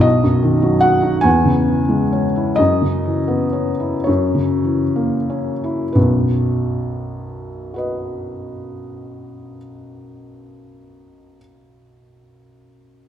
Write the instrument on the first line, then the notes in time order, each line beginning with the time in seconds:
felt piano
0.00 B1 D#5
0.23 F#2
0.43 D#3
0.62 F#3
0.81 F#4 F#5
1.02 D#4
1.21 E2 G#5
1.45 C#3
1.67 E3
1.89 G#3
2.13 C#4
2.36 E4
2.56 F#2 D#5
2.82 C#3
3.05 E3
3.28 B3
3.53 C#4
3.80 E4
4.04 F#2 C#5
4.35 C#3
4.64 E3
4.96 A#3
5.30 C#4
5.64 E4
5.93 B1 F#2 B4
7.74 F#4 B4
7.78 D#5